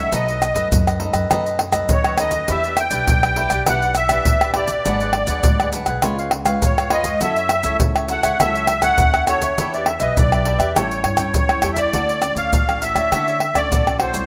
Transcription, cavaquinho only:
Already playing: A4 C#5 E5
0.12 D#4 A4 B4 D#5
0.28 A4 B4 D#5
0.41 muted cavaquinho stroke
0.54 A4 B4 D#5
0.87 A4 B4 D#5
0.99 D#4 A4 B4 D#5
1.13 A4 B4 D#5
1.30 D#4 A4 B4 D#5
1.46 A4 B4 D#5
1.60 muted cavaquinho stroke
1.72 A4 B4 D#5
2.06 A4 B4 D#5
2.19 D#4 A4 B4 D#5
2.33 A4 B4 D#5
2.50 E4 G4 B4 D5
2.65 G4 B4 D5
2.78 muted cavaquinho stroke
2.91 G4 B4 D5
3.23 G4 B4 D5
3.37 E4 G4 B4 D5
3.51 G4 B4 D5
3.67 E4 G4 B4 D5
3.83 G4 B4 D5
3.97 muted cavaquinho stroke
4.11 G4 B4 D5
4.43 G4 B4 D5
4.55 E4 G4 B4 D5
4.69 G4 B4 D5
4.85 D4 G#4 B4 F#5
5.01 G#4 B4 F#5
5.15 muted cavaquinho stroke
5.28 G#4 B4 F#5
5.61 G#4 B4 F#5
5.73 D4 G#4 B4 F#5
5.87 G#4 B4 F#5
6.03 F4 B4 C#5 F5
6.19 B4 C#5 F5
6.33 muted cavaquinho stroke
6.45 B4 C#5 F5
6.78 B4 C#5 F5
6.90 F4 B4 C#5 F5
7.04 B4 C#5 F5
7.20 F#4 A4 C#5 E5
7.37 A4 C#5 E5
7.51 muted cavaquinho stroke
7.64 A4 C#5 E5
7.96 A4 C#5 E5
8.10 F#4 A4 C#5 E5
8.23 A4 C#5 E5
8.40 F#4 A4 C#5 E5
8.56 A4 C#5 E5
8.69 muted cavaquinho stroke
8.82 A4 C#5 E5
9.15 A4 C#5 E5
9.28 F#4 A4 C#5 E5
9.42 A4 C#5 E5
9.58 D4 G4 B4 E5
9.74 G4 B4 E5
9.87 muted cavaquinho stroke
10.01 G4 B4 E5
10.32 G4 B4 E5
10.45 D4 G4 B4 E5
10.58 G4 B4 E5
10.75 G4 A4 C#5 G5
10.91 A4 C#5 G5
11.05 muted cavaquinho stroke
11.18 A4 C#5 G5
11.50 A4 C#5 G5
11.63 G4 A4 C#5 G5
11.77 A4 C#5 G5
11.94 F#4 A4 C#5 D5
12.09 A4 C#5 D5
12.22 muted cavaquinho stroke
12.35 A4 C#5 D5
12.67 A4 C#5 D5
12.81 F#4 A4 C#5 D5
12.95 A4 C#5 D5
13.12 F#4 A4 C#5 D5
13.28 A4 C#5 D5
13.41 muted cavaquinho stroke
13.54 A4 C#5 D5
13.71 F#4 A4 C#5 D5
13.99 F#4 A4 C#5 D5
14.13 A4 C#5 D5

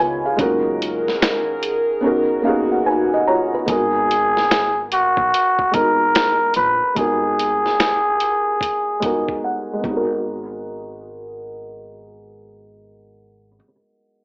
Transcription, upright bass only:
0.00 C#2
0.39 F#1
3.69 G#1
5.18 B1
5.75 G#1
6.57 A#1
6.97 G#1
9.03 F1
9.85 G#1

